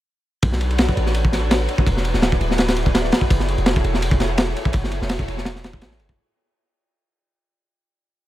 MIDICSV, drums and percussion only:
0, 0, Header, 1, 2, 480
1, 0, Start_track
1, 0, Tempo, 359281
1, 573, Time_signature, 4, 2, 24, 8
1, 11055, End_track
2, 0, Start_track
2, 0, Title_t, "Drums"
2, 569, Note_on_c, 9, 51, 87
2, 572, Note_on_c, 9, 36, 104
2, 700, Note_on_c, 9, 38, 48
2, 703, Note_off_c, 9, 51, 0
2, 706, Note_off_c, 9, 36, 0
2, 811, Note_on_c, 9, 51, 66
2, 834, Note_off_c, 9, 38, 0
2, 942, Note_off_c, 9, 51, 0
2, 942, Note_on_c, 9, 51, 46
2, 1046, Note_off_c, 9, 51, 0
2, 1046, Note_on_c, 9, 51, 83
2, 1055, Note_on_c, 9, 38, 116
2, 1180, Note_off_c, 9, 51, 0
2, 1184, Note_on_c, 9, 36, 100
2, 1189, Note_off_c, 9, 38, 0
2, 1295, Note_on_c, 9, 51, 65
2, 1318, Note_off_c, 9, 36, 0
2, 1418, Note_on_c, 9, 38, 39
2, 1429, Note_off_c, 9, 51, 0
2, 1529, Note_on_c, 9, 51, 81
2, 1551, Note_off_c, 9, 38, 0
2, 1662, Note_off_c, 9, 51, 0
2, 1665, Note_on_c, 9, 36, 97
2, 1770, Note_on_c, 9, 38, 54
2, 1776, Note_on_c, 9, 51, 69
2, 1799, Note_off_c, 9, 36, 0
2, 1904, Note_off_c, 9, 38, 0
2, 1910, Note_off_c, 9, 51, 0
2, 2014, Note_on_c, 9, 51, 99
2, 2018, Note_on_c, 9, 38, 117
2, 2148, Note_off_c, 9, 51, 0
2, 2151, Note_off_c, 9, 38, 0
2, 2251, Note_on_c, 9, 51, 74
2, 2381, Note_on_c, 9, 36, 97
2, 2385, Note_off_c, 9, 51, 0
2, 2492, Note_off_c, 9, 36, 0
2, 2492, Note_on_c, 9, 36, 108
2, 2499, Note_on_c, 9, 51, 80
2, 2626, Note_off_c, 9, 36, 0
2, 2630, Note_on_c, 9, 38, 50
2, 2633, Note_off_c, 9, 51, 0
2, 2734, Note_on_c, 9, 51, 72
2, 2764, Note_off_c, 9, 38, 0
2, 2854, Note_on_c, 9, 38, 43
2, 2868, Note_off_c, 9, 51, 0
2, 2970, Note_off_c, 9, 38, 0
2, 2970, Note_on_c, 9, 38, 110
2, 2978, Note_on_c, 9, 51, 79
2, 3103, Note_on_c, 9, 36, 103
2, 3104, Note_off_c, 9, 38, 0
2, 3112, Note_off_c, 9, 51, 0
2, 3216, Note_on_c, 9, 51, 69
2, 3237, Note_off_c, 9, 36, 0
2, 3349, Note_off_c, 9, 51, 0
2, 3351, Note_on_c, 9, 38, 51
2, 3446, Note_on_c, 9, 51, 83
2, 3458, Note_off_c, 9, 38, 0
2, 3458, Note_on_c, 9, 38, 113
2, 3579, Note_off_c, 9, 51, 0
2, 3584, Note_on_c, 9, 51, 81
2, 3586, Note_off_c, 9, 38, 0
2, 3586, Note_on_c, 9, 38, 117
2, 3693, Note_off_c, 9, 51, 0
2, 3693, Note_on_c, 9, 51, 87
2, 3719, Note_off_c, 9, 38, 0
2, 3822, Note_on_c, 9, 36, 86
2, 3826, Note_off_c, 9, 51, 0
2, 3936, Note_on_c, 9, 38, 106
2, 3937, Note_on_c, 9, 51, 88
2, 3956, Note_off_c, 9, 36, 0
2, 4061, Note_off_c, 9, 38, 0
2, 4061, Note_on_c, 9, 38, 35
2, 4071, Note_off_c, 9, 51, 0
2, 4170, Note_on_c, 9, 51, 78
2, 4176, Note_off_c, 9, 38, 0
2, 4176, Note_on_c, 9, 38, 114
2, 4293, Note_on_c, 9, 36, 89
2, 4304, Note_off_c, 9, 51, 0
2, 4309, Note_off_c, 9, 38, 0
2, 4414, Note_on_c, 9, 51, 99
2, 4415, Note_off_c, 9, 36, 0
2, 4415, Note_on_c, 9, 36, 105
2, 4538, Note_on_c, 9, 38, 43
2, 4548, Note_off_c, 9, 36, 0
2, 4548, Note_off_c, 9, 51, 0
2, 4654, Note_on_c, 9, 51, 62
2, 4671, Note_off_c, 9, 38, 0
2, 4783, Note_off_c, 9, 51, 0
2, 4783, Note_on_c, 9, 51, 40
2, 4889, Note_off_c, 9, 51, 0
2, 4889, Note_on_c, 9, 51, 84
2, 4892, Note_on_c, 9, 38, 127
2, 5023, Note_off_c, 9, 51, 0
2, 5025, Note_off_c, 9, 38, 0
2, 5026, Note_on_c, 9, 36, 100
2, 5134, Note_on_c, 9, 51, 61
2, 5159, Note_off_c, 9, 36, 0
2, 5265, Note_on_c, 9, 38, 46
2, 5267, Note_off_c, 9, 51, 0
2, 5373, Note_on_c, 9, 51, 86
2, 5399, Note_off_c, 9, 38, 0
2, 5496, Note_on_c, 9, 36, 100
2, 5507, Note_off_c, 9, 51, 0
2, 5611, Note_on_c, 9, 38, 54
2, 5611, Note_on_c, 9, 51, 61
2, 5629, Note_off_c, 9, 36, 0
2, 5745, Note_off_c, 9, 38, 0
2, 5745, Note_off_c, 9, 51, 0
2, 5847, Note_on_c, 9, 51, 103
2, 5853, Note_on_c, 9, 38, 125
2, 5980, Note_off_c, 9, 51, 0
2, 5986, Note_off_c, 9, 38, 0
2, 6098, Note_on_c, 9, 51, 72
2, 6217, Note_on_c, 9, 36, 87
2, 6232, Note_off_c, 9, 51, 0
2, 6317, Note_on_c, 9, 51, 92
2, 6333, Note_off_c, 9, 36, 0
2, 6333, Note_on_c, 9, 36, 111
2, 6451, Note_off_c, 9, 51, 0
2, 6465, Note_on_c, 9, 38, 49
2, 6467, Note_off_c, 9, 36, 0
2, 6566, Note_on_c, 9, 51, 74
2, 6598, Note_off_c, 9, 38, 0
2, 6700, Note_off_c, 9, 51, 0
2, 6704, Note_on_c, 9, 38, 42
2, 6805, Note_on_c, 9, 51, 92
2, 6809, Note_off_c, 9, 38, 0
2, 6809, Note_on_c, 9, 38, 108
2, 6936, Note_on_c, 9, 36, 97
2, 6938, Note_off_c, 9, 51, 0
2, 6943, Note_off_c, 9, 38, 0
2, 7056, Note_on_c, 9, 51, 67
2, 7069, Note_off_c, 9, 36, 0
2, 7185, Note_on_c, 9, 38, 43
2, 7189, Note_off_c, 9, 51, 0
2, 7285, Note_off_c, 9, 38, 0
2, 7285, Note_on_c, 9, 38, 104
2, 7297, Note_on_c, 9, 51, 78
2, 7419, Note_off_c, 9, 38, 0
2, 7424, Note_on_c, 9, 38, 57
2, 7431, Note_off_c, 9, 51, 0
2, 7535, Note_on_c, 9, 51, 76
2, 7541, Note_off_c, 9, 38, 0
2, 7541, Note_on_c, 9, 38, 110
2, 7661, Note_on_c, 9, 36, 106
2, 7669, Note_off_c, 9, 51, 0
2, 7674, Note_off_c, 9, 38, 0
2, 7769, Note_on_c, 9, 51, 88
2, 7774, Note_on_c, 9, 38, 106
2, 7794, Note_off_c, 9, 36, 0
2, 7896, Note_off_c, 9, 38, 0
2, 7896, Note_on_c, 9, 38, 41
2, 7903, Note_off_c, 9, 51, 0
2, 8009, Note_on_c, 9, 51, 62
2, 8029, Note_off_c, 9, 38, 0
2, 8137, Note_on_c, 9, 36, 88
2, 8143, Note_off_c, 9, 51, 0
2, 8271, Note_off_c, 9, 36, 0
2, 11055, End_track
0, 0, End_of_file